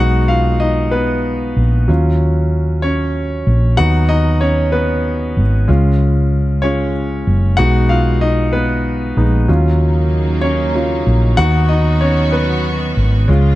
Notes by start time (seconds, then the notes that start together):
Already playing: G#3 B3 F#5
0.00 B1 D#4 F#4
0.28 F4 F5
0.60 D#4 D#5
0.91 B3 B4
1.56 A#1
1.88 D#2 F#3 C#4 F4
2.82 C#4 C#5
3.47 A#1
3.77 D#2 F#3 B3 D#4 F#4 F#5
4.09 D#4 D#5
4.41 C#4 C#5
4.72 B3 B4
5.37 G#1
5.68 C#2 G#3 C#4 F4
6.62 G#3 C#4 F4 C#5
7.27 F#1
7.57 B1 G#3 B3 D#4 F#4 F#5
7.89 F4 F5
8.21 D#4 D#5
8.53 B3 B4
9.16 A#1 G#3 B3 D#4
9.48 D#2 C#3 F#3 A#3 C#4 D#4 F4
10.41 C#4 C#5
10.75 F#3 C#4 F4
11.07 A#1
11.37 D#2 D#3 F#3 B3 D#4 F#4 F#5
11.69 D#4 D#5
12.01 C#4 C#5
12.32 B3 B4
12.97 G#1
13.28 C#2 C#3 F3 G#3 C#4 F4